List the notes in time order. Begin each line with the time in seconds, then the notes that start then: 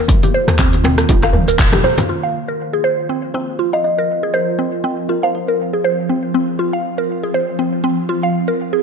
Already playing: D#3 A#3 F4
0.08 kick, closed hi-hat, muted conga, low conga
0.23 G4, closed hi-hat, high conga
0.34 C5
0.48 D#2, cross-stick, closed hi-hat, muted conga, djembe slap, high conga
0.59 C4, kick, clap, closed hi-hat, high conga
0.73 closed hi-hat, muted conga
0.84 C4, mid tom, djembe slap, djembe tone
0.98 cross-stick, closed hi-hat, muted conga
1.09 D#1 F4, kick, closed hi-hat, low conga
1.23 F5, cross-stick, clap, muted conga, high conga
1.33 high tom, djembe bass
1.48 A#4, closed hi-hat, djembe tone
1.58 D#1, kick, clap, closed hi-hat, mid tom, muted conga
1.73 G4, cross-stick, closed hi-hat, mid tom, djembe tone, low conga
1.84 C5, muted conga, djembe tone
1.98 closed hi-hat, mid tom, djembe slap, high conga
2.09 F3 C4 F4
2.23 F5
2.48 A#4
2.73 G#4
2.84 C5
3.09 C4
3.34 C4 C5
3.59 F4
3.73 D#5 F5
3.84 D#5
3.98 A#4
4.23 G#4
4.34 A#4 C5
4.59 C4
4.84 C4
5.09 F4 A#4
5.23 C5 F5
5.35 C5
5.48 A#4
5.73 G#4
5.84 C5
6.09 C4
6.34 C4
6.59 F4
6.73 F5
6.98 A#4
7.23 G#4
7.34 C5
7.59 C4
7.84 C4
8.09 F4
8.23 F5
8.48 A#4
8.73 G#4